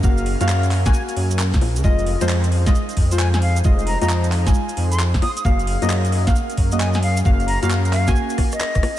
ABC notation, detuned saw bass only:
X:1
M:4/4
L:1/16
Q:"Swing 16ths" 1/4=133
K:Gblyd
V:1 name="Detuned saw bass" clef=bass
G,,,3 G,,4 G,,, z2 G,,3 D,, B,,, D,, | F,,,3 F,,4 F,,, z2 F,,6 | F,,,3 F,,4 F,,, z2 F,,4 z2 | G,,,3 G,,4 G,,, z2 G,,6 |
G,,,3 G,,4 G,,, z4 z G,,, z2 |]